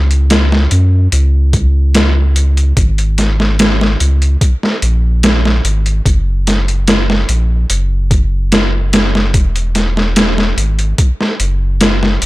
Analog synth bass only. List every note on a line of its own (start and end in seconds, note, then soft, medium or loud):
0.00 0.67 C#2 medium
0.72 1.08 F#2 medium
1.13 2.73 C#2 medium
2.77 3.96 G#1 medium
4.01 4.37 C#2 medium
4.83 5.61 A#1 medium
5.65 6.01 G#1 medium
6.06 7.25 F#1 medium
7.29 7.65 A#1 medium
7.70 9.36 F#1 medium
9.34 10.54 E1 medium
10.57 10.94 G#1 medium
11.40 12.18 F#1 medium
12.22 12.26 E1 medium